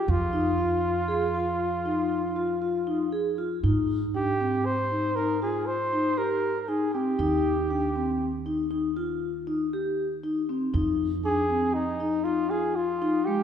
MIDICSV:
0, 0, Header, 1, 4, 480
1, 0, Start_track
1, 0, Tempo, 507185
1, 79, Time_signature, 7, 2, 24, 8
1, 12711, End_track
2, 0, Start_track
2, 0, Title_t, "Flugelhorn"
2, 0, Program_c, 0, 56
2, 0, Note_on_c, 0, 67, 73
2, 93, Note_on_c, 0, 65, 73
2, 107, Note_off_c, 0, 67, 0
2, 2968, Note_off_c, 0, 65, 0
2, 3929, Note_on_c, 0, 67, 77
2, 4404, Note_on_c, 0, 72, 79
2, 4418, Note_off_c, 0, 67, 0
2, 4879, Note_on_c, 0, 70, 75
2, 4893, Note_off_c, 0, 72, 0
2, 5121, Note_off_c, 0, 70, 0
2, 5130, Note_on_c, 0, 68, 70
2, 5358, Note_on_c, 0, 72, 83
2, 5372, Note_off_c, 0, 68, 0
2, 5845, Note_on_c, 0, 70, 75
2, 5860, Note_off_c, 0, 72, 0
2, 6253, Note_off_c, 0, 70, 0
2, 6253, Note_on_c, 0, 70, 54
2, 6325, Note_on_c, 0, 68, 67
2, 6340, Note_off_c, 0, 70, 0
2, 6553, Note_off_c, 0, 68, 0
2, 6558, Note_on_c, 0, 67, 73
2, 7964, Note_off_c, 0, 67, 0
2, 10646, Note_on_c, 0, 68, 83
2, 11113, Note_on_c, 0, 63, 73
2, 11127, Note_off_c, 0, 68, 0
2, 11584, Note_on_c, 0, 65, 73
2, 11599, Note_off_c, 0, 63, 0
2, 11831, Note_on_c, 0, 68, 69
2, 11845, Note_off_c, 0, 65, 0
2, 12072, Note_on_c, 0, 65, 78
2, 12086, Note_off_c, 0, 68, 0
2, 12544, Note_on_c, 0, 67, 79
2, 12558, Note_off_c, 0, 65, 0
2, 12711, Note_off_c, 0, 67, 0
2, 12711, End_track
3, 0, Start_track
3, 0, Title_t, "Vibraphone"
3, 0, Program_c, 1, 11
3, 311, Note_on_c, 1, 63, 67
3, 465, Note_off_c, 1, 63, 0
3, 549, Note_on_c, 1, 65, 67
3, 855, Note_off_c, 1, 65, 0
3, 1024, Note_on_c, 1, 68, 70
3, 1180, Note_off_c, 1, 68, 0
3, 1272, Note_on_c, 1, 65, 63
3, 1577, Note_off_c, 1, 65, 0
3, 1755, Note_on_c, 1, 63, 62
3, 2059, Note_off_c, 1, 63, 0
3, 2235, Note_on_c, 1, 65, 70
3, 2388, Note_off_c, 1, 65, 0
3, 2476, Note_on_c, 1, 65, 65
3, 2629, Note_off_c, 1, 65, 0
3, 2717, Note_on_c, 1, 63, 61
3, 2870, Note_off_c, 1, 63, 0
3, 2957, Note_on_c, 1, 68, 64
3, 3110, Note_off_c, 1, 68, 0
3, 3200, Note_on_c, 1, 65, 64
3, 3352, Note_off_c, 1, 65, 0
3, 3443, Note_on_c, 1, 63, 72
3, 3745, Note_off_c, 1, 63, 0
3, 3924, Note_on_c, 1, 62, 58
3, 4075, Note_off_c, 1, 62, 0
3, 4165, Note_on_c, 1, 60, 58
3, 4467, Note_off_c, 1, 60, 0
3, 4649, Note_on_c, 1, 63, 59
3, 4799, Note_off_c, 1, 63, 0
3, 4891, Note_on_c, 1, 63, 68
3, 5040, Note_off_c, 1, 63, 0
3, 5131, Note_on_c, 1, 65, 60
3, 5431, Note_off_c, 1, 65, 0
3, 5613, Note_on_c, 1, 63, 67
3, 5762, Note_off_c, 1, 63, 0
3, 5845, Note_on_c, 1, 67, 67
3, 6147, Note_off_c, 1, 67, 0
3, 6325, Note_on_c, 1, 63, 68
3, 6476, Note_off_c, 1, 63, 0
3, 6571, Note_on_c, 1, 60, 67
3, 6720, Note_off_c, 1, 60, 0
3, 6804, Note_on_c, 1, 63, 77
3, 7107, Note_off_c, 1, 63, 0
3, 7291, Note_on_c, 1, 62, 67
3, 7441, Note_off_c, 1, 62, 0
3, 7532, Note_on_c, 1, 60, 63
3, 7832, Note_off_c, 1, 60, 0
3, 8004, Note_on_c, 1, 63, 65
3, 8156, Note_off_c, 1, 63, 0
3, 8241, Note_on_c, 1, 63, 69
3, 8394, Note_off_c, 1, 63, 0
3, 8485, Note_on_c, 1, 65, 66
3, 8787, Note_off_c, 1, 65, 0
3, 8964, Note_on_c, 1, 63, 66
3, 9115, Note_off_c, 1, 63, 0
3, 9211, Note_on_c, 1, 67, 69
3, 9511, Note_off_c, 1, 67, 0
3, 9686, Note_on_c, 1, 63, 64
3, 9837, Note_off_c, 1, 63, 0
3, 9930, Note_on_c, 1, 60, 63
3, 10079, Note_off_c, 1, 60, 0
3, 10162, Note_on_c, 1, 63, 72
3, 10464, Note_off_c, 1, 63, 0
3, 10649, Note_on_c, 1, 62, 70
3, 10798, Note_off_c, 1, 62, 0
3, 10881, Note_on_c, 1, 60, 63
3, 11184, Note_off_c, 1, 60, 0
3, 11358, Note_on_c, 1, 63, 68
3, 11510, Note_off_c, 1, 63, 0
3, 11598, Note_on_c, 1, 63, 71
3, 11750, Note_off_c, 1, 63, 0
3, 11841, Note_on_c, 1, 65, 66
3, 12143, Note_off_c, 1, 65, 0
3, 12319, Note_on_c, 1, 63, 74
3, 12470, Note_off_c, 1, 63, 0
3, 12561, Note_on_c, 1, 56, 71
3, 12711, Note_off_c, 1, 56, 0
3, 12711, End_track
4, 0, Start_track
4, 0, Title_t, "Upright bass"
4, 0, Program_c, 2, 32
4, 76, Note_on_c, 2, 41, 71
4, 3402, Note_off_c, 2, 41, 0
4, 3439, Note_on_c, 2, 44, 65
4, 6766, Note_off_c, 2, 44, 0
4, 6804, Note_on_c, 2, 39, 68
4, 10125, Note_off_c, 2, 39, 0
4, 10163, Note_on_c, 2, 41, 72
4, 12711, Note_off_c, 2, 41, 0
4, 12711, End_track
0, 0, End_of_file